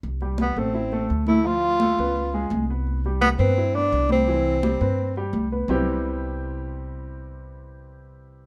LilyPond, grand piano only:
\new Staff \with { instrumentName = "Grand piano" } { \time 4/4 \key c \major \tempo 4 = 170 r8 <g g'>4 <a a'>8 <e' e''>8 <a a'>4 <a a'>8 | <f f'>4 <a a'>8 <b b'>4 <aes aes'>4 <ces' ces''>8~ | <ces' ces''>8 <g g'>4 <b b'>8 <e' e''>8 <b b'>4 <g g'>8 | <e e'>4 <g g'>8 <c' b'>4 <g g'>4 <b b'>8 |
<c g b c' e' g'>1~ | <c g b c' e' g'>1 | }